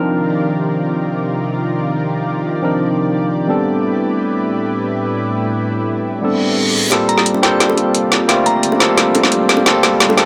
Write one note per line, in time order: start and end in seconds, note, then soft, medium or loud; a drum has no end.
0.00 3.45 C3 medium
0.00 3.45 D#3 medium
0.00 2.61 F3 medium
0.00 2.61 C4 medium
0.00 2.61 D4 medium
0.00 2.62 D#4 medium
0.00 3.45 F4 medium
0.00 6.88 G4 medium
0.00 2.62 A#4 medium
0.00 3.45 A#4 medium
0.00 6.88 D5 medium
2.62 3.46 F3 medium
2.62 3.47 C4 medium
2.62 3.47 D4 medium
2.62 3.47 D#4 medium
2.62 3.48 A#4 medium
3.48 6.89 A2 medium
3.48 6.21 G3 medium
3.48 6.21 B3 medium
3.48 6.21 C4 medium
3.48 6.21 D4 medium
3.48 6.88 E4 medium
3.48 6.22 A4 medium
3.48 6.88 B4 medium
6.22 6.89 G3 medium
6.22 6.89 B3 medium
6.22 6.90 C4 medium
6.22 6.90 D4 medium
6.22 6.90 A4 medium
6.22 reverse cymbal medium
6.90 7.40 G3 loud
6.90 10.25 G3 medium
6.90 7.41 A#3 medium
6.90 10.25 C4 medium
6.90 7.41 C4 medium
6.90 10.25 D4 medium
6.90 10.25 F4 medium
6.90 7.41 F4 medium
6.90 10.25 G4 medium
6.90 7.42 A4 loud
6.90 10.25 D5 medium
6.90 snare soft
6.90 closed hi-hat medium
6.90 riser medium
7.09 7.30 A#5 medium
7.09 closed hi-hat medium
7.18 snare soft
7.26 closed hi-hat loud
7.34 high bongo soft
7.42 8.26 G3 medium
7.42 8.27 A#3 medium
7.42 8.27 C4 medium
7.42 8.27 F4 medium
7.42 8.28 A4 loud
7.42 7.64 G5 medium
7.42 snare soft
7.42 closed hi-hat medium
7.60 snare medium
7.60 closed hi-hat loud
7.70 high bongo soft
7.78 closed hi-hat medium
7.95 closed hi-hat medium
8.12 snare medium
8.12 closed hi-hat medium
8.28 8.78 G3 medium
8.28 8.79 A3 loud
8.28 8.78 A#3 medium
8.28 8.78 C4 medium
8.28 8.79 F4 medium
8.28 snare medium
8.28 closed hi-hat medium
8.46 8.94 A#5 medium
8.46 closed hi-hat medium
8.63 closed hi-hat loud
8.72 high bongo soft
8.79 9.63 G3 medium
8.79 9.64 A#3 medium
8.79 9.64 C4 medium
8.79 9.65 F4 medium
8.79 9.65 A4 loud
8.79 snare medium
8.79 closed hi-hat medium
8.98 snare medium
8.98 closed hi-hat medium
9.15 closed hi-hat medium
9.15 high bongo medium
9.24 snare medium
9.32 closed hi-hat medium
9.49 snare medium
9.49 closed hi-hat medium
9.57 high bongo medium
9.65 10.15 G3 medium
9.65 10.15 A#3 medium
9.65 10.16 C4 medium
9.65 10.16 F4 medium
9.65 10.16 A4 loud
9.65 snare medium
9.65 closed hi-hat medium
9.83 snare medium
9.83 closed hi-hat medium
10.00 snare medium
10.00 closed hi-hat medium
10.10 high bongo medium
10.16 10.25 G3 medium
10.16 10.25 A#3 medium
10.16 10.25 C4 medium
10.16 10.25 F4 medium
10.16 10.25 A4 loud
10.16 snare medium
10.16 closed hi-hat medium